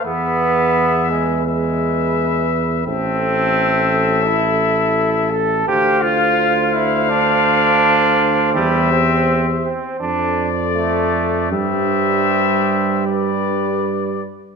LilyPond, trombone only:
\new Staff \with { instrumentName = "Trombone" } { \time 4/4 \key e \phrygian \tempo 4 = 84 b4. gis8 gis4. r8 | \key c \major c'2 e'4. a'8 | g'8 f'4 e'8 d'2 | g8 c'4 c'8 d'8 r8 a4 |
g2. r4 | }